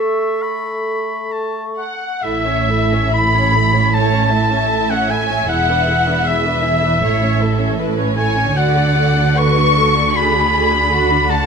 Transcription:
0.00 1.84 A3 soft
0.00 1.75 A4 soft
0.00 0.44 E5 soft
0.00 1.84 C#6 soft
0.42 1.34 B5 soft
1.32 1.64 A5 soft
1.78 2.24 F#5 soft
1.78 2.21 F#5 soft
2.22 5.45 A1 soft
2.22 5.45 A2 soft
2.22 2.45 E4 soft
2.22 2.45 A4 soft
2.22 3.14 E5 soft
2.22 3.13 E5 medium
2.45 2.69 C#4 soft
2.45 2.69 C#5 soft
2.68 2.92 E4 soft
2.68 2.92 A4 soft
2.92 3.14 C#4 soft
2.92 3.14 C#5 soft
3.13 3.34 E4 soft
3.13 3.34 A4 soft
3.13 3.94 B5 medium
3.13 3.96 B5 medium
3.35 3.55 C#4 soft
3.35 3.55 C#5 soft
3.54 3.75 E4 soft
3.54 3.75 A4 soft
3.74 3.94 C#4 soft
3.74 3.94 C#5 soft
3.94 4.12 E4 soft
3.94 4.12 A4 soft
3.94 4.30 C#5 soft
3.94 4.89 A5 soft
3.94 4.92 A5 medium
4.13 4.33 C#4 soft
4.13 4.33 C#5 soft
4.31 4.52 E4 soft
4.31 4.52 A4 soft
4.31 6.99 E5 soft
4.51 4.71 C#4 soft
4.51 4.71 C#5 soft
4.70 4.89 E4 soft
4.70 4.89 A4 soft
4.89 5.10 C#4 soft
4.89 5.10 C#5 soft
4.89 5.12 F#5 soft
4.89 5.11 F#5 soft
5.10 5.30 E4 soft
5.10 5.30 A4 soft
5.10 5.49 G#5 soft
5.10 5.48 G#5 medium
5.29 5.49 C#4 soft
5.29 5.49 C#5 soft
5.49 7.00 E1 soft
5.49 7.00 E2 soft
5.49 5.67 E4 soft
5.49 5.67 G#4 soft
5.49 6.29 F#5 medium
5.49 6.25 F#5 medium
5.68 5.88 D4 soft
5.68 5.88 B4 soft
5.87 6.07 E4 soft
5.87 6.07 G#4 soft
6.06 6.26 D4 soft
6.06 6.26 B4 soft
6.25 6.44 E4 soft
6.25 6.44 G#4 soft
6.25 7.79 E5 soft
6.25 7.79 E5 medium
6.45 6.64 D4 soft
6.45 6.64 B4 soft
6.63 6.83 E4 soft
6.63 6.83 G#4 soft
6.83 7.02 D4 soft
6.83 7.02 B4 soft
7.01 8.55 A1 soft
7.01 8.55 A2 soft
7.01 7.20 E4 soft
7.01 7.20 A4 soft
7.01 7.41 C#5 soft
7.21 7.40 C#4 soft
7.21 7.40 C#5 soft
7.40 7.59 E4 soft
7.40 7.59 A4 soft
7.40 7.79 A4 soft
7.58 7.78 C#4 soft
7.58 7.78 C#5 soft
7.78 7.96 E4 soft
7.78 7.96 A4 soft
7.78 8.17 B4 soft
7.97 8.16 C#4 soft
7.97 8.16 C#5 soft
8.16 8.36 E4 soft
8.16 8.36 A4 soft
8.16 8.56 C#5 soft
8.16 8.53 G#5 soft
8.16 8.58 G#5 medium
8.36 8.55 C#4 soft
8.36 8.55 C#5 soft
8.55 11.46 D2 soft
8.55 11.46 D3 soft
8.55 8.73 F#4 soft
8.55 8.73 A4 soft
8.55 9.39 D5 medium
8.55 9.38 F#5 soft
8.55 9.39 F#5 medium
8.75 8.96 D4 soft
8.75 8.94 F#4 soft
8.95 9.15 F#4 soft
8.95 9.17 A4 soft
9.16 9.37 D4 soft
9.16 9.36 F#4 soft
9.37 9.56 F#4 soft
9.37 9.56 A4 soft
9.37 9.77 B4 medium
9.37 10.15 C#6 medium
9.37 10.18 C#6 medium
9.57 9.77 D4 soft
9.57 9.75 F#4 soft
9.76 9.95 F#4 soft
9.76 9.96 A4 soft
9.76 10.16 A4 soft
9.96 10.15 D4 soft
9.96 10.13 F#4 soft
10.15 10.32 F#4 soft
10.15 10.90 G#4 medium
10.15 10.33 A4 soft
10.15 11.30 B5 medium
10.15 11.31 B5 medium
10.33 10.53 D4 soft
10.33 10.52 F#4 soft
10.53 10.71 F#4 soft
10.53 10.72 A4 soft
10.72 10.91 D4 soft
10.72 10.90 F#4 soft
10.91 11.09 F#4 soft
10.91 11.31 F#4 soft
10.91 11.09 A4 soft
11.10 11.30 D4 soft
11.10 11.28 F#4 soft
11.30 11.46 F#4 soft
11.30 11.46 A4 soft
11.30 11.46 F#5 medium
11.30 11.46 A5 medium

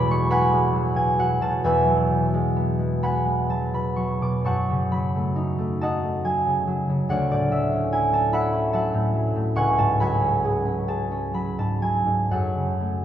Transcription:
0.00 1.63 E2 medium
0.00 0.94 B2 medium
0.00 0.72 F#3 medium
0.00 0.29 B3 medium
0.00 0.78 E5 medium
0.00 0.30 F#5 medium
0.00 0.30 G#5 medium
0.00 0.24 B5 loud
0.10 0.50 G#3 medium
0.10 0.46 C#6 loud
0.30 2.55 B3 medium
0.30 1.18 F#5 medium
0.30 0.95 G#5 medium
0.30 3.02 B5 loud
0.51 2.33 G#3 medium
0.73 1.18 F#3 medium
0.95 1.40 B2 medium
0.95 1.34 G#5 medium
1.18 1.87 F#3 medium
1.18 3.03 F#5 medium
1.41 2.10 B2 medium
1.41 1.80 A5 loud
1.64 4.50 E2 medium
1.64 4.51 B4 medium
1.64 4.51 E5 medium
1.64 3.02 G#5 loud
1.88 3.48 F#3 medium
2.11 3.72 B2 medium
2.34 2.78 G#3 medium
2.56 3.02 B3 soft
2.79 3.24 G#3 medium
3.03 4.50 B3 medium
3.03 4.45 F#5 medium
3.03 4.50 G#5 medium
3.03 3.73 B5 medium
3.25 4.49 G#3 soft
3.49 3.96 F#3 soft
3.49 4.45 A5 medium
3.74 4.20 B2 soft
3.74 4.15 B5 medium
3.96 4.91 F#3 soft
3.96 4.38 C#6 medium
4.21 4.49 B2 soft
4.21 4.63 D6 medium
4.44 7.13 F#2 medium
4.44 5.82 F#5 medium
4.44 5.80 A5 medium
4.44 8.35 C#6 medium
4.70 6.45 C#3 soft
4.91 6.24 F#3 soft
4.91 6.42 B5 medium
5.15 5.57 A3 medium
5.36 5.81 D#4 soft
5.58 6.02 A3 medium
5.81 7.14 D#4 medium
5.81 7.14 D#5 medium
5.81 7.08 F#5 medium
5.81 8.12 A5 medium
6.03 9.59 A3 soft
6.24 6.66 F#3 soft
6.24 7.67 G#5 medium
6.46 6.88 C#3 soft
6.67 7.50 F#3 soft
6.89 7.14 C#3 soft
7.09 9.59 D2 medium
7.09 11.01 C#5 medium
7.09 7.30 D5 medium
7.09 8.32 F#5 medium
7.31 8.92 A2 soft
7.31 7.66 D5 medium
7.51 8.72 F#3 soft
7.51 8.33 E5 medium
7.72 8.11 C#4 medium
7.92 8.32 E4 medium
7.92 8.26 G#5 medium
8.12 8.51 C#4 medium
8.12 8.47 A5 medium
8.32 9.60 E4 medium
8.32 8.73 E5 medium
8.32 8.73 F#5 medium
8.32 9.02 B5 loud
8.53 10.20 C#4 medium
8.73 9.13 F#3 soft
8.73 9.61 E5 medium
8.73 9.55 F#5 medium
8.73 9.60 A5 medium
8.93 9.34 A2 medium
9.14 9.99 F#3 medium
9.36 9.60 A2 medium
9.55 12.35 C#2 medium
9.55 10.00 F#5 medium
9.55 10.00 G#5 medium
9.55 13.05 C#6 loud
9.77 11.57 G#2 medium
9.77 10.15 A5 medium
10.00 11.33 F#3 medium
10.00 12.30 F#5 medium
10.00 11.81 G#5 medium
10.00 11.33 B5 medium
10.21 10.64 C#4 medium
10.44 10.87 G#4 medium
10.66 11.10 C#4 medium
10.88 13.05 G#4 medium
10.88 11.58 A5 medium
11.11 13.02 C#4 medium
11.33 11.81 F#3 soft
11.33 11.75 B5 medium
11.58 12.04 G#2 soft
11.58 12.00 A5 medium
11.82 13.05 F#3 soft
11.82 13.05 G#5 medium
12.06 12.35 G#2 soft
12.31 13.05 F#2 medium
12.31 13.05 A4 soft
12.31 13.05 C#5 medium
12.31 13.05 F#5 medium
12.56 13.05 C#3 soft
12.80 13.05 A3 soft

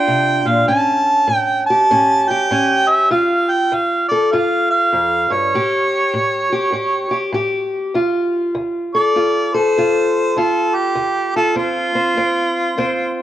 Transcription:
0.00 0.66 D4 medium
0.00 0.67 F4 medium
0.00 0.49 G5 loud
0.07 0.45 C3 medium
0.46 0.68 A#2 medium
0.46 0.68 F5 medium
0.68 1.25 A2 medium
0.68 1.89 C#4 medium
0.68 1.36 A5 loud
1.28 1.85 A2 medium
1.36 1.63 G5 loud
1.66 2.29 G4 medium
1.66 2.31 A5 loud
1.91 2.47 A2 medium
1.91 2.51 C#4 medium
2.29 3.10 G4 medium
2.29 2.90 G5 medium
2.51 3.07 A2 medium
2.51 3.09 C#4 medium
2.89 3.11 E5 medium
3.11 3.67 D2 medium
3.11 4.30 F4 medium
3.11 3.52 F5 medium
3.50 3.76 G5 medium
3.72 4.28 D2 medium
3.72 4.08 F5 medium
4.08 4.36 A4 medium
4.08 4.33 D5 medium
4.31 4.89 G2 medium
4.31 5.51 F4 medium
4.31 4.70 F5 medium
4.70 5.34 F5 medium
4.93 5.30 F2 medium
5.30 5.53 G2 medium
5.30 7.36 C#5 medium
5.55 6.10 A2 medium
5.55 6.51 G4 medium
6.14 6.70 A2 medium
6.53 6.72 G4 medium
6.73 7.30 A2 medium
6.73 7.10 G4 medium
7.11 7.33 G4 medium
7.33 7.90 A2 medium
7.33 7.93 G4 medium
7.95 8.51 D2 medium
7.95 9.16 F4 medium
8.55 9.11 D2 medium
8.95 9.54 A4 medium
8.95 9.56 D5 medium
9.16 9.72 D2 medium
9.16 9.78 F4 medium
9.54 13.04 A4 medium
9.54 10.40 C5 medium
9.77 10.33 D2 medium
9.77 10.37 F4 medium
10.36 10.92 D2 medium
10.36 11.36 F4 medium
10.36 10.76 A4 medium
10.75 11.33 G4 medium
10.95 11.52 D2 medium
11.36 13.22 F4 medium
11.36 11.57 A4 medium
11.55 12.12 D2 medium
11.55 11.95 C4 medium
11.55 13.22 F4 loud
11.95 12.17 C4 medium
12.17 12.73 D2 medium
12.17 12.78 C4 medium
12.77 13.22 D2 medium
12.77 13.22 C4 medium

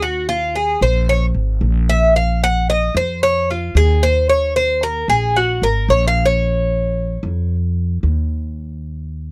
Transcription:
0.00 0.74 D#2 medium
0.00 0.28 F#4 medium
0.29 0.54 F4 medium
0.55 0.81 G#4 medium
0.81 1.31 A#1 medium
0.81 1.08 C5 medium
1.09 1.25 C#5 medium
1.34 1.60 G#1 medium
1.61 2.88 A#1 medium
1.89 2.15 E5 medium
2.16 2.42 F5 medium
2.44 2.69 F#5 medium
2.70 2.95 D#5 medium
2.95 3.71 F2 medium
2.95 3.22 C5 medium
3.23 3.49 C#5 loud
3.51 3.76 F4 medium
3.75 5.02 D#2 medium
3.75 4.02 G#4 medium
4.03 4.29 C5 medium
4.29 4.55 C#5 medium
4.56 4.82 C5 medium
4.83 5.09 A#4 medium
5.08 5.58 A#1 medium
5.08 5.35 G#4 medium
5.36 5.62 F#4 medium
5.62 5.87 G#1 medium
5.62 5.89 A#4 medium
5.88 7.16 A#1 medium
5.88 6.07 C#5 medium
6.08 6.25 F5 medium
6.26 7.55 C#5 medium
7.23 7.99 F2 medium
8.03 9.30 D#2 medium

